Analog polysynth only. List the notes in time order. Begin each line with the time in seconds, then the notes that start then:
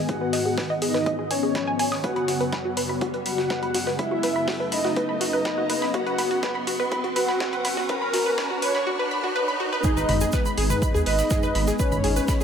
0.09 F#4
0.82 D#4
1.31 C#4
2.04 F#4
3.26 F#4
3.99 E4
4.72 D#4
5.21 D#4
5.94 F#4
7.16 F#4
7.89 A#4
8.62 C#5
9.84 D#4
11.06 D#4
11.80 C#4